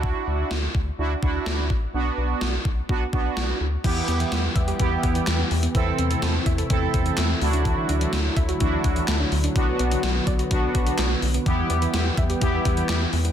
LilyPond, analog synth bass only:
\new Staff \with { instrumentName = "Analog synth bass" } { \clef bass \time 4/4 \key e \minor \tempo 4 = 126 d,8 d,8 d,8 d,8 d,8 d,8 d,8 a,,8 | b,,8 b,,8 b,,8 b,,8 b,,8 b,,8 b,,8 d,8 | e,8 e,8 e,8 e,8 e,8 e,8 e,8 e,8 | e,8 e,8 e,8 e,8 e,8 e,8 e,8 d,8~ |
d,8 d,8 d,8 d,8 d,8 d,8 d,8 d,8 | b,,8 b,,8 b,,8 b,,8 b,,8 b,,8 b,,8 b,,8 | e,8 e,8 e,8 e,8 e,8 e,8 e,8 e,8 | }